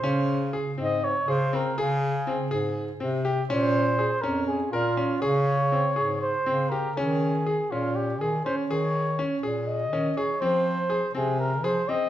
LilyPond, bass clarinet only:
\new Staff \with { instrumentName = "Bass clarinet" } { \clef bass \time 7/8 \key ees \mixolydian \tempo 4 = 122 des4. aes,4 des4 | des4. aes,4 c4 | bes,4. f,4 bes,4 | des4. aes,4 des4 |
ees4. bes,4 ees8 r8 | ees4. bes,4 ees8 r8 | f4. c4 f8 r8 | }